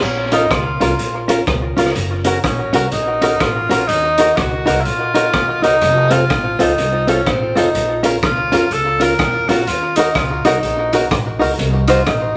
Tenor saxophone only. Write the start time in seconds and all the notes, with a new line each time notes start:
0.03 C#4
0.33 D#4
0.51 F4
2.44 C#4
2.92 D#4
3.41 F4
3.88 D#4
4.36 F#4
4.80 E4 F4
5.63 D#4
6.11 F4
6.61 D#4
7.09 C#4
7.28 C4
7.56 D#4
8.25 F4
8.73 A4
9.02 A#4
9.49 F#4
9.68 F4
9.97 D#4
10.16 F4
10.45 D#4
10.93 F#4
11.88 F4
12.07 D#4